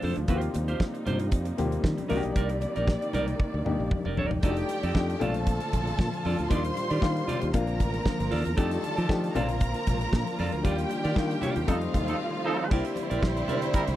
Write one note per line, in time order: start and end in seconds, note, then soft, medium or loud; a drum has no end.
0.00 0.13 F2 medium
0.00 0.25 A#2 medium
0.00 0.25 C3 medium
0.00 2.06 F3 medium
0.00 0.26 A3 medium
0.00 0.30 A3 medium
0.00 0.28 C4 medium
0.00 0.26 D4 medium
0.00 0.30 D4 medium
0.00 0.19 D4 medium
0.00 0.29 F4 medium
0.00 0.16 A4 medium
0.00 open hi-hat medium
0.00 high conga medium
0.05 0.15 C5 medium
0.16 0.26 D2 medium
0.16 muted clean electric guitar stroke soft
0.16 closed hi-hat soft
0.28 0.47 D#2 medium
0.28 4.40 C3 medium
0.28 4.40 G3 medium
0.28 1.14 A#3 medium
0.28 2.08 A#3 medium
0.28 1.15 C4 medium
0.28 2.09 D#4 medium
0.28 0.49 F4 medium
0.28 1.15 F4 medium
0.28 0.36 F#4 medium
0.28 0.42 G4 medium
0.28 0.41 C5 medium
0.28 kick loud
0.28 closed hi-hat medium
0.36 1.18 G4 medium
0.41 muted clean electric guitar stroke soft
0.41 closed hi-hat medium
0.54 0.74 D#2 loud
0.54 muted clean electric guitar stroke soft
0.54 closed hi-hat medium
0.54 muted conga medium
0.68 0.84 F4 medium
0.68 0.84 G4 medium
0.68 0.83 C5 medium
0.68 closed hi-hat soft
0.80 kick loud
0.80 snare loud
0.80 high conga medium
0.94 muted clean electric guitar stroke medium
0.94 closed hi-hat soft
1.06 1.32 G2 medium
1.06 1.27 F4 medium
1.06 1.20 G4 medium
1.06 1.19 C5 loud
1.06 closed hi-hat medium
1.06 muted conga medium
1.06 low conga medium
1.19 muted clean electric guitar stroke soft
1.19 closed hi-hat medium
1.32 1.51 F2 loud
1.32 muted clean electric guitar stroke soft
1.32 kick loud
1.32 closed hi-hat medium
1.32 muted conga soft
1.45 muted clean electric guitar stroke soft
1.45 closed hi-hat soft
1.57 1.77 D#2 medium
1.57 2.08 A#3 medium
1.57 2.10 C4 medium
1.57 2.10 F4 medium
1.57 2.10 G4 medium
1.57 closed hi-hat medium
1.57 muted conga medium
1.57 low conga medium
1.71 muted clean electric guitar stroke soft
1.71 closed hi-hat soft
1.84 1.94 D#3 medium
1.84 kick loud
1.84 snare loud
1.84 high conga medium
1.98 muted clean electric guitar stroke soft
1.98 closed hi-hat soft
1.98 high conga medium
2.09 2.21 C2 loud
2.09 4.41 D#3 medium
2.09 2.96 A#3 medium
2.09 4.41 A#3 medium
2.09 2.96 D4 medium
2.09 2.30 D#4 medium
2.09 2.96 D#4 medium
2.09 2.17 F#4 medium
2.09 2.23 A#4 loud
2.09 2.22 D5 medium
2.09 4.41 D5 medium
2.09 open hi-hat medium
2.09 high conga medium
2.17 3.00 G4 loud
2.23 2.33 B1 medium
2.23 muted clean electric guitar stroke soft
2.23 closed hi-hat soft
2.36 2.64 C2 medium
2.36 2.57 D#4 medium
2.36 2.50 A#4 loud
2.36 2.49 D5 medium
2.36 kick loud
2.36 closed hi-hat medium
2.49 muted clean electric guitar stroke soft
2.49 closed hi-hat medium
2.61 muted clean electric guitar stroke soft
2.61 closed hi-hat medium
2.61 muted conga medium
2.76 2.95 A#1 medium
2.76 2.92 D#4 soft
2.76 2.91 A#4 medium
2.76 2.91 D5 medium
2.76 closed hi-hat soft
2.87 kick loud
2.87 snare loud
2.87 high conga medium
3.01 muted clean electric guitar stroke soft
3.01 closed hi-hat soft
3.13 3.33 C2 loud
3.13 3.34 D#4 medium
3.13 3.27 A#4 medium
3.13 3.26 D5 loud
3.13 closed hi-hat medium
3.13 muted conga medium
3.13 low conga medium
3.27 muted clean electric guitar stroke soft
3.27 closed hi-hat soft
3.40 muted clean electric guitar stroke soft
3.40 kick loud
3.40 high tom medium
3.40 muted conga soft
3.54 3.63 D2 medium
3.54 muted clean electric guitar stroke soft
3.65 3.76 D#2 medium
3.65 4.30 A#3 medium
3.65 4.30 D4 medium
3.65 4.31 D#4 medium
3.65 4.31 G4 medium
3.65 mid tom medium
3.65 muted conga soft
3.65 low conga medium
3.80 3.88 A#1 medium
3.80 muted clean electric guitar stroke soft
3.91 muted clean electric guitar stroke soft
3.91 kick loud
3.91 mid tom medium
3.91 high conga medium
4.05 4.18 F1 medium
4.05 4.16 D#4 soft
4.05 4.17 A#4 medium
4.05 4.17 D5 medium
4.05 mid tom medium
4.05 high conga medium
4.17 4.28 D#1 medium
4.17 4.38 D#4 medium
4.17 4.31 A#4 medium
4.17 4.30 D5 medium
4.17 floor tom medium
4.17 high conga medium
4.31 4.40 E1 medium
4.31 muted clean electric guitar stroke soft
4.31 floor tom medium
4.42 4.62 F1 medium
4.42 5.20 D#3 medium
4.42 5.21 G3 medium
4.42 4.86 A3 medium
4.42 6.49 A3 medium
4.42 4.87 D4 medium
4.42 4.64 D#4 medium
4.42 4.87 D#4 medium
4.42 7.51 F4 medium
4.42 4.50 F#4 medium
4.42 5.19 G4 medium
4.42 4.57 A4 medium
4.42 5.21 D5 medium
4.42 4.56 D5 medium
4.42 5.19 G5 medium
4.42 kick loud
4.42 closed hi-hat medium
4.50 4.90 G4 medium
4.57 muted clean electric guitar stroke soft
4.57 closed hi-hat soft
4.69 muted clean electric guitar stroke soft
4.69 closed hi-hat medium
4.69 muted conga medium
4.83 4.92 F2 medium
4.83 4.99 D#4 medium
4.83 4.99 A4 medium
4.83 4.98 D5 medium
4.83 closed hi-hat soft
4.95 5.14 F2 loud
4.95 5.18 A3 medium
4.95 5.20 D4 medium
4.95 5.21 D#4 medium
4.95 5.22 G4 medium
4.95 kick loud
4.95 snare loud
4.95 high conga medium
5.09 muted clean electric guitar stroke soft
5.09 closed hi-hat soft
5.20 5.58 A#1 loud
5.20 7.52 A#2 medium
5.20 6.50 D3 medium
5.20 6.50 F3 medium
5.20 6.07 A3 medium
5.20 6.07 C4 medium
5.20 6.07 D4 medium
5.20 5.42 F4 medium
5.20 6.07 F4 loud
5.20 6.48 A4 medium
5.20 5.35 A4 medium
5.20 5.34 D5 medium
5.20 6.48 A5 medium
5.20 closed hi-hat medium
5.20 muted conga medium
5.20 low conga medium
5.34 muted clean electric guitar stroke soft
5.34 closed hi-hat medium
5.47 muted clean electric guitar stroke soft
5.47 kick loud
5.47 closed hi-hat medium
5.60 muted clean electric guitar stroke soft
5.60 closed hi-hat soft
5.73 5.92 A#1 medium
5.73 kick medium
5.73 closed hi-hat medium
5.73 muted conga soft
5.73 low conga medium
5.87 muted clean electric guitar stroke soft
5.87 closed hi-hat soft
5.99 6.09 A#2 medium
5.99 kick loud
5.99 snare loud
5.99 high conga medium
6.13 muted clean electric guitar stroke soft
6.13 closed hi-hat soft
6.25 6.35 F2 medium
6.25 6.46 F4 medium
6.25 6.38 A4 medium
6.25 6.38 D5 medium
6.25 open hi-hat medium
6.25 high conga medium
6.39 6.48 D2 medium
6.39 muted clean electric guitar stroke soft
6.39 closed hi-hat soft
6.49 6.69 D#2 loud
6.49 7.54 D#3 medium
6.49 6.93 G3 medium
6.49 7.54 G3 medium
6.49 6.94 A#3 medium
6.49 6.94 D4 medium
6.49 7.54 D4 medium
6.49 6.57 D#4 medium
6.49 6.71 F4 medium
6.49 6.64 G4 medium
6.49 7.52 C5 medium
6.49 6.63 D5 medium
6.49 7.52 C6 medium
6.49 kick loud
6.49 closed hi-hat medium
6.57 6.97 F4 medium
6.64 muted clean electric guitar stroke medium
6.64 closed hi-hat medium
6.75 muted clean electric guitar stroke soft
6.75 closed hi-hat medium
6.75 muted conga medium
6.90 6.99 D#3 medium
6.90 7.06 F4 medium
6.90 7.06 G4 medium
6.90 7.06 D5 medium
6.90 closed hi-hat soft
7.01 7.21 D#3 medium
7.01 7.54 G3 medium
7.01 7.52 A#3 medium
7.01 7.53 D4 medium
7.01 7.53 F4 loud
7.01 kick loud
7.01 snare loud
7.01 high conga medium
7.16 muted clean electric guitar stroke soft
7.16 closed hi-hat soft
7.28 7.49 F4 medium
7.28 7.41 G4 medium
7.28 7.40 D5 loud
7.28 closed hi-hat medium
7.28 muted conga medium
7.28 low conga medium
7.41 7.51 D#2 medium
7.41 muted clean electric guitar stroke soft
7.41 closed hi-hat medium
7.53 7.80 A#1 loud
7.53 8.57 D3 medium
7.53 8.57 F3 medium
7.53 8.40 A#3 medium
7.53 8.57 A#3 medium
7.53 8.40 C4 medium
7.53 8.40 D4 medium
7.53 11.64 F4 medium
7.53 8.41 F4 loud
7.53 8.56 A#4 medium
7.53 8.56 A#5 medium
7.53 muted clean electric guitar stroke soft
7.53 kick loud
7.53 closed hi-hat medium
7.67 muted clean electric guitar stroke medium
7.67 closed hi-hat soft
7.80 7.99 A1 medium
7.80 kick medium
7.80 closed hi-hat medium
7.80 muted conga soft
7.80 low conga medium
7.93 muted clean electric guitar stroke soft
7.93 closed hi-hat soft
8.06 kick loud
8.06 snare loud
8.06 high conga medium
8.19 8.29 G1 medium
8.19 muted clean electric guitar stroke soft
8.19 closed hi-hat soft
8.31 8.42 D#2 medium
8.31 8.52 F4 medium
8.31 8.45 A4 medium
8.31 8.44 D5 medium
8.31 open hi-hat medium
8.31 high conga medium
8.45 8.55 E2 medium
8.45 muted clean electric guitar stroke soft
8.45 closed hi-hat soft
8.57 8.76 F2 loud
8.57 9.35 D#3 medium
8.57 9.35 G3 medium
8.57 9.01 A3 medium
8.57 9.01 D4 medium
8.57 8.78 D#4 medium
8.57 9.01 D#4 medium
8.57 9.01 G4 medium
8.57 9.34 A4 medium
8.57 8.71 A4 medium
8.57 9.35 D5 medium
8.57 8.70 D5 medium
8.57 9.34 A5 medium
8.57 kick loud
8.57 closed hi-hat medium
8.71 muted clean electric guitar stroke soft
8.71 closed hi-hat medium
8.82 muted clean electric guitar stroke soft
8.82 closed hi-hat medium
8.82 muted conga medium
8.97 9.07 F3 medium
8.97 9.13 D#4 medium
8.97 9.13 A4 medium
8.97 9.12 D5 medium
8.97 closed hi-hat soft
9.09 9.28 F3 loud
9.09 9.35 A3 medium
9.09 9.34 D4 medium
9.09 9.36 D#4 medium
9.09 9.36 G4 medium
9.09 kick loud
9.09 snare loud
9.09 high conga medium
9.23 muted clean electric guitar stroke medium
9.23 closed hi-hat soft
9.34 9.73 A#1 loud
9.34 10.63 D3 medium
9.34 10.63 F3 medium
9.34 11.65 A#3 medium
9.34 10.21 A#3 loud
9.34 10.21 C4 medium
9.34 10.21 D4 medium
9.34 9.56 F4 medium
9.34 10.22 F4 loud
9.34 9.49 A4 medium
9.34 10.62 A#4 medium
9.34 9.48 D5 medium
9.34 10.62 A#5 medium
9.34 closed hi-hat medium
9.34 muted conga medium
9.34 low conga medium
9.49 muted clean electric guitar stroke soft
9.49 closed hi-hat medium
9.61 muted clean electric guitar stroke soft
9.61 kick loud
9.61 closed hi-hat medium
9.61 muted conga soft
9.74 muted clean electric guitar stroke soft
9.74 closed hi-hat medium
9.87 10.06 A#1 medium
9.87 kick medium
9.87 snare soft
9.87 closed hi-hat medium
9.87 muted conga soft
9.87 low conga medium
10.01 muted clean electric guitar stroke soft
10.01 closed hi-hat soft
10.13 10.23 A#2 loud
10.13 kick loud
10.13 snare loud
10.13 high conga medium
10.27 muted clean electric guitar stroke soft
10.27 closed hi-hat soft
10.39 10.49 F2 medium
10.39 10.60 F4 medium
10.39 10.52 A4 medium
10.39 10.51 D5 medium
10.39 open hi-hat medium
10.39 high conga medium
10.52 10.62 D2 medium
10.52 muted clean electric guitar stroke soft
10.52 closed hi-hat soft
10.63 10.84 D#2 loud
10.63 11.67 D#3 medium
10.63 11.07 G3 medium
10.63 11.67 G3 medium
10.63 11.08 A#3 medium
10.63 11.08 D4 medium
10.63 11.67 D4 medium
10.63 10.85 F4 medium
10.63 11.08 F4 medium
10.63 11.66 G4 medium
10.63 10.78 G4 medium
10.63 10.77 D5 medium
10.63 11.66 G5 medium
10.63 kick loud
10.63 closed hi-hat medium
10.78 muted clean electric guitar stroke soft
10.78 closed hi-hat medium
10.90 muted clean electric guitar stroke soft
10.90 closed hi-hat medium
10.90 muted conga medium
11.04 11.13 D#3 loud
11.04 11.20 F4 soft
11.04 11.20 G4 medium
11.04 11.19 D5 medium
11.04 closed hi-hat soft
11.15 11.35 D#3 loud
11.15 11.66 G3 medium
11.15 11.68 A#3 medium
11.15 11.68 D4 medium
11.15 11.68 F4 medium
11.15 kick loud
11.15 snare loud
11.15 high conga medium
11.30 muted clean electric guitar stroke medium
11.30 closed hi-hat soft
11.41 11.62 F4 medium
11.41 11.56 G4 medium
11.41 11.54 D5 medium
11.41 closed hi-hat medium
11.41 muted conga medium
11.41 low conga medium
11.56 11.65 D#2 medium
11.56 muted clean electric guitar stroke medium
11.56 closed hi-hat medium
11.67 11.87 F2 loud
11.67 12.70 D#3 medium
11.67 11.77 F3 medium
11.67 12.70 F3 medium
11.67 12.53 G3 medium
11.67 12.53 A3 medium
11.67 12.70 A3 medium
11.67 12.54 C4 medium
11.67 12.70 C4 medium
11.67 11.77 D#4 medium
11.67 12.54 D#4 loud
11.67 12.69 F4 medium
11.67 12.70 F4 medium
11.67 11.77 A4 medium
11.67 12.69 F5 medium
11.67 muted clean electric guitar stroke soft
11.67 kick loud
11.67 closed hi-hat medium
11.81 muted clean electric guitar stroke soft
11.81 closed hi-hat soft
11.94 12.13 D#2 medium
11.94 kick loud
11.94 snare soft
11.94 closed hi-hat medium
11.94 muted conga medium
11.94 low conga medium
12.07 12.15 F3 medium
12.07 12.15 D#4 medium
12.07 12.15 A4 medium
12.07 muted clean electric guitar stroke soft
12.07 closed hi-hat soft
12.33 muted clean electric guitar stroke soft
12.45 12.67 F3 medium
12.45 12.66 D#4 medium
12.45 12.67 D#4 medium
12.45 12.67 A4 medium
12.45 12.59 A4 medium
12.45 12.58 C5 medium
12.59 muted clean electric guitar stroke soft
12.71 12.81 C2 loud
12.71 13.96 D3 medium
12.71 13.96 G3 medium
12.71 13.56 A#3 medium
12.71 13.96 A#3 medium
12.71 13.96 C4 medium
12.71 13.57 D4 medium
12.71 12.92 E4 medium
12.71 13.96 E4 medium
12.71 13.57 E4 medium
12.71 13.57 G4 medium
12.71 12.85 A#4 medium
12.71 13.96 C5 medium
12.71 12.84 D5 medium
12.71 kick loud
12.71 crash medium
12.85 muted clean electric guitar stroke soft
12.85 closed hi-hat medium
12.96 muted clean electric guitar stroke soft
12.96 closed hi-hat medium
12.96 muted conga medium
13.10 13.20 A#1 medium
13.10 13.26 E4 medium
13.10 13.26 A#4 medium
13.10 13.26 D5 medium
13.10 closed hi-hat medium
13.22 13.41 A#1 medium
13.22 kick loud
13.22 snare loud
13.22 high conga medium
13.36 muted clean electric guitar stroke medium
13.36 closed hi-hat soft
13.48 13.69 E4 medium
13.48 13.62 A#4 medium
13.48 13.61 D5 medium
13.48 closed hi-hat medium
13.48 muted conga medium
13.48 low conga medium
13.62 muted clean electric guitar stroke medium
13.62 closed hi-hat medium
13.74 13.83 G3 medium
13.74 13.83 E4 medium
13.74 13.83 A#4 medium
13.74 muted clean electric guitar stroke soft
13.74 kick loud
13.74 closed hi-hat medium
13.74 muted conga soft
13.87 13.96 C2 loud
13.87 muted clean electric guitar stroke soft
13.87 closed hi-hat soft